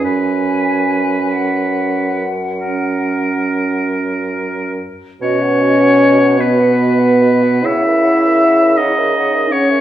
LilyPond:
<<
  \new Staff \with { instrumentName = "Flute" } { \time 12/8 \key b \major \tempo 4. = 47 gis''4. fis''2. r4. | dis''16 fis''16 dis''16 fis''16 dis''16 fis''16 dis''16 fis''16 dis''16 fis''16 dis''16 fis''16 fis''16 e''16 fis''16 e''16 fis''16 e''16 fis''16 e''16 fis''16 e''16 fis''16 e''16 | }
  \new Staff \with { instrumentName = "Oboe" } { \time 12/8 \key b \major b'2~ b'8 r8 ais'2~ ais'8 r8 | cis''4. b'4. e''4. dis''4 cis''8 | }
  \new Staff \with { instrumentName = "Clarinet" } { \time 12/8 \key b \major cis'2~ cis'8. r16 cis'2~ cis'8 r8 | fis'16 b'16 fis'16 b'16 fis'16 b'16 fis'16 b'16 fis'16 b'16 fis'16 b'16 cis''16 ais'16 cis''16 ais'16 cis''16 ais'16 cis''16 ais'16 cis''16 ais'16 cis''16 ais'16 | }
  \new Staff \with { instrumentName = "French horn" } { \time 12/8 \key b \major cis'1~ cis'4~ cis'16 r8. | cis'4. b4. e'4. dis'4 cis'8 | }
  \new Staff \with { instrumentName = "Bassoon" } { \clef bass \time 12/8 \key b \major fis,1~ fis,4. r8 | b,2. cis2. | }
>>